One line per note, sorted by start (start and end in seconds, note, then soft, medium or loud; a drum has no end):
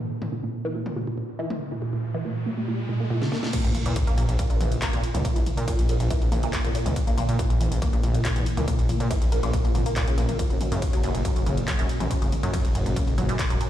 0.00 1.82 A#2 medium
0.00 0.09 A#2 medium
0.00 downlifter medium
0.11 riser medium
0.22 0.25 A#2 medium
0.22 mid tom medium
0.32 0.41 A#2 medium
0.43 0.47 A#2 medium
0.65 0.70 E3 loud
0.75 0.84 A#2 medium
0.86 mid tom medium
0.96 1.00 A#2 medium
1.07 1.16 A#2 medium
1.18 1.21 A#2 medium
1.39 1.45 E3 loud
1.50 1.59 A#2 medium
1.50 mid tom medium
1.72 1.75 A#2 medium
1.82 1.91 A#2 medium
1.93 1.97 A#2 medium
2.15 2.20 E3 loud
2.25 2.34 A#2 medium
2.46 2.50 A#2 medium
2.57 2.66 A#2 medium
2.68 2.71 A#2 medium
2.89 2.99 A#2 medium
3.00 3.06 A#3 medium
3.10 3.20 A#2 loud
3.22 3.28 C#3 medium
3.22 snare medium
3.32 3.41 A#3 medium
3.32 snare medium
3.43 3.52 A#2 medium
3.43 snare medium
3.53 13.70 A#2 medium
3.53 kick loud
3.53 closed hi-hat loud
3.53 ride medium
3.53 crash loud
3.53 sub drop medium
3.64 3.73 A#1 loud
3.64 3.73 A#2 medium
3.64 closed hi-hat medium
3.75 3.84 A#2 medium
3.75 open hi-hat loud
3.75 mid tom medium
3.86 3.94 A#2 medium
3.86 3.95 E3 medium
3.86 closed hi-hat medium
3.96 kick loud
3.96 closed hi-hat loud
3.96 ride medium
4.07 4.16 A#1 loud
4.07 4.13 A#3 medium
4.07 closed hi-hat medium
4.18 4.27 A#1 medium
4.18 4.24 A#2 loud
4.18 open hi-hat loud
4.29 4.37 A#1 medium
4.29 closed hi-hat medium
4.39 4.49 A#2 medium
4.39 kick loud
4.39 closed hi-hat loud
4.39 ride medium
4.50 4.59 A#1 medium
4.50 4.59 A#2 medium
4.50 closed hi-hat medium
4.60 4.78 A#1 loud
4.60 4.70 E3 medium
4.60 open hi-hat loud
4.60 mid tom medium
4.72 closed hi-hat medium
4.82 4.88 A#3 medium
4.82 kick loud
4.82 clap loud
4.82 closed hi-hat loud
4.82 ride medium
4.93 5.01 G#1 loud
4.93 4.99 A#2 loud
4.93 closed hi-hat medium
5.04 open hi-hat loud
5.14 5.23 C#2 loud
5.14 5.23 A#2 medium
5.14 closed hi-hat medium
5.14 mid tom medium
5.25 5.34 A#2 medium
5.25 kick loud
5.25 closed hi-hat loud
5.25 ride medium
5.36 5.44 A#1 loud
5.36 5.45 E3 medium
5.36 closed hi-hat medium
5.46 open hi-hat loud
5.46 mid tom medium
5.57 5.66 A#2 medium
5.57 5.63 A#3 medium
5.57 closed hi-hat medium
5.68 5.74 A#2 loud
5.68 kick loud
5.68 closed hi-hat loud
5.68 ride medium
5.79 5.87 A#1 loud
5.79 closed hi-hat medium
5.89 5.98 A#1 medium
5.89 5.99 A#2 medium
5.89 open hi-hat loud
6.00 6.09 A#1 medium
6.00 6.09 A#2 medium
6.00 closed hi-hat medium
6.10 6.20 E3 medium
6.10 kick loud
6.10 closed hi-hat loud
6.10 ride medium
6.22 6.30 A#1 medium
6.22 open hi-hat medium
6.32 6.49 A#1 loud
6.32 6.38 A#3 medium
6.32 open hi-hat loud
6.32 mid tom medium
6.43 6.49 A#2 loud
6.43 closed hi-hat medium
6.53 kick loud
6.53 clap loud
6.53 closed hi-hat loud
6.53 ride medium
6.64 6.73 G#1 loud
6.64 6.73 A#2 medium
6.64 closed hi-hat medium
6.75 6.84 A#2 medium
6.75 open hi-hat loud
6.86 6.94 C#2 loud
6.86 6.95 E3 medium
6.86 closed hi-hat medium
6.86 mid tom medium
6.96 kick loud
6.96 closed hi-hat loud
6.96 ride medium
7.07 7.16 A#1 loud
7.07 7.13 A#3 medium
7.07 closed hi-hat medium
7.17 7.24 A#2 loud
7.17 open hi-hat loud
7.17 mid tom medium
7.29 7.37 A#2 medium
7.29 closed hi-hat medium
7.39 7.49 A#2 medium
7.39 kick loud
7.39 closed hi-hat loud
7.39 ride medium
7.50 7.59 A#1 loud
7.50 7.59 A#2 medium
7.50 closed hi-hat medium
7.60 7.69 A#1 medium
7.60 7.70 E3 medium
7.60 open hi-hat loud
7.72 7.80 A#1 medium
7.72 closed hi-hat medium
7.82 7.88 A#3 medium
7.82 kick loud
7.82 closed hi-hat loud
7.82 ride medium
7.93 8.01 A#1 medium
7.93 7.99 A#2 loud
7.93 closed hi-hat medium
8.03 8.21 A#1 loud
8.03 open hi-hat loud
8.03 mid tom medium
8.14 8.23 A#2 medium
8.14 closed hi-hat medium
8.25 8.34 A#2 medium
8.25 kick loud
8.25 clap loud
8.25 closed hi-hat loud
8.25 ride medium
8.36 8.44 G#1 loud
8.36 8.45 E3 medium
8.36 closed hi-hat medium
8.46 open hi-hat loud
8.57 8.66 C#2 loud
8.57 8.63 A#3 medium
8.57 closed hi-hat medium
8.57 mid tom medium
8.68 8.74 A#2 loud
8.68 kick loud
8.68 closed hi-hat medium
8.68 ride medium
8.79 8.87 A#1 loud
8.79 closed hi-hat medium
8.89 8.99 A#2 medium
8.89 open hi-hat loud
8.89 mid tom medium
9.00 9.09 A#2 medium
9.00 closed hi-hat medium
9.11 9.20 E3 medium
9.11 kick loud
9.11 closed hi-hat medium
9.11 ride medium
9.22 9.30 A#1 loud
9.22 closed hi-hat medium
9.32 9.41 A#1 medium
9.32 9.38 A#3 medium
9.32 open hi-hat loud
9.43 9.51 A#1 medium
9.43 9.49 A#2 loud
9.43 closed hi-hat medium
9.53 kick loud
9.53 closed hi-hat medium
9.53 ride medium
9.64 9.73 A#1 medium
9.64 9.73 A#2 medium
9.64 open hi-hat medium
9.75 9.84 G#1 loud
9.75 9.84 A#2 medium
9.75 open hi-hat loud
9.75 mid tom loud
9.86 9.92 A#3 medium
9.86 closed hi-hat medium
9.96 10.05 C#2 loud
9.96 10.06 A#2 loud
9.96 kick loud
9.96 clap loud
9.96 closed hi-hat medium
9.96 ride medium
10.08 10.13 C#3 medium
10.08 closed hi-hat medium
10.18 10.27 A#1 loud
10.18 10.27 A#3 medium
10.18 open hi-hat loud
10.29 10.38 A#2 medium
10.29 closed hi-hat medium
10.29 mid tom medium
10.39 kick loud
10.39 closed hi-hat loud
10.39 ride medium
10.50 10.59 F#1 loud
10.50 10.59 F#2 medium
10.50 closed hi-hat soft
10.61 10.70 F#2 medium
10.61 open hi-hat loud
10.61 mid tom medium
10.72 10.80 F#2 medium
10.72 10.81 C#3 medium
10.72 closed hi-hat medium
10.82 kick loud
10.82 closed hi-hat medium
10.82 ride medium
10.93 11.01 F#1 loud
10.93 10.99 F#3 medium
10.93 closed hi-hat medium
11.03 11.12 F#1 medium
11.03 11.10 F#2 loud
11.03 open hi-hat loud
11.14 11.23 F#1 medium
11.14 closed hi-hat soft
11.25 11.34 F#2 medium
11.25 kick loud
11.25 closed hi-hat medium
11.25 ride medium
11.36 11.44 F#1 medium
11.36 11.45 F#2 medium
11.36 closed hi-hat medium
11.46 11.64 F#1 loud
11.46 11.56 C#3 medium
11.46 open hi-hat loud
11.46 mid tom loud
11.57 closed hi-hat medium
11.68 11.74 F#3 medium
11.68 kick loud
11.68 clap loud
11.68 closed hi-hat medium
11.68 ride medium
11.79 11.87 E1 loud
11.79 11.85 F#2 loud
11.79 closed hi-hat medium
11.89 open hi-hat loud
12.00 12.09 A1 loud
12.00 12.09 F#2 medium
12.00 closed hi-hat medium
12.00 mid tom loud
12.11 12.20 F#2 medium
12.11 kick loud
12.11 closed hi-hat medium
12.11 ride medium
12.22 12.30 F#1 loud
12.22 12.30 C#3 medium
12.22 closed hi-hat medium
12.32 open hi-hat loud
12.32 mid tom medium
12.43 12.52 F#2 medium
12.43 12.49 F#3 medium
12.43 closed hi-hat soft
12.53 12.60 F#2 loud
12.53 kick loud
12.53 closed hi-hat medium
12.53 ride medium
12.65 12.73 F#1 loud
12.65 closed hi-hat medium
12.75 12.84 F#1 medium
12.75 12.84 F#2 medium
12.75 open hi-hat loud
12.86 12.94 F#1 medium
12.86 12.95 F#2 medium
12.86 closed hi-hat soft
12.96 13.06 C#3 medium
12.96 kick loud
12.96 closed hi-hat medium
12.96 ride medium
13.07 13.16 F#1 medium
13.07 open hi-hat medium
13.18 13.35 F#1 loud
13.18 13.24 F#3 medium
13.18 open hi-hat loud
13.18 mid tom loud
13.29 13.35 F#2 loud
13.29 closed hi-hat soft
13.39 kick loud
13.39 clap loud
13.39 closed hi-hat medium
13.39 ride medium
13.50 13.59 E1 loud
13.50 13.59 F#2 medium
13.50 closed hi-hat medium
13.61 13.70 F#2 medium
13.61 open hi-hat loud